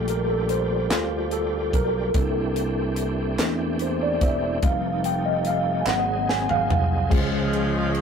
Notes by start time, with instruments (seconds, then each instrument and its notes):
Already playing: fingered electric bass A#1, tonewheel organ G3 D4 F4 G4, tine electric piano A3 A#3 F4 A4
0.08 tine electric piano A#4, closed hi-hat
0.30 tine electric piano A4
0.49 tine electric piano C5, closed hi-hat
0.90 fingered electric bass D2, tine electric piano F4, snare, clap, closed hi-hat
1.31 tine electric piano A4, closed hi-hat
1.73 fingered electric bass B1, tine electric piano A#4, kick, closed hi-hat
2.14 fingered electric bass C2, tonewheel organ E3 C4 D4 G4, tine electric piano A#3 D4 E4 A4, kick, closed hi-hat
2.56 closed hi-hat
2.96 closed hi-hat
3.38 fingered electric bass E2, tine electric piano A3 A#3 D4 E4, snare, clap, closed hi-hat
3.79 tine electric piano C5, closed hi-hat
4.03 tine electric piano D5
4.21 fingered electric bass E1, tine electric piano E5, kick, closed hi-hat
4.62 fingered electric bass F1, tonewheel organ F3 G3 D#4 G4, tine electric piano G3 A3 D#4 F5, kick, closed hi-hat
4.69 tonewheel organ A3
5.04 tine electric piano G5, closed hi-hat
5.26 tine electric piano D#5
5.45 tine electric piano F5, closed hi-hat
5.81 tine electric piano G#5
5.86 fingered electric bass G#1, tonewheel organ F#3 C4 D#4 G#4, tine electric piano F#3 A#3 C4 F#5, snare, clap
6.29 tine electric piano G#5, snare
6.49 tine electric piano F5, mid tom
6.68 fingered electric bass C2, floor tom
7.09 fingered electric bass C#2, tonewheel organ C#3 F3 G#3 G#4 C5, tine electric piano C#3 G#3, kick, crash
7.13 saxophone section F3 G#3 C#4, tine electric piano F4 C5
7.53 ride
7.95 ride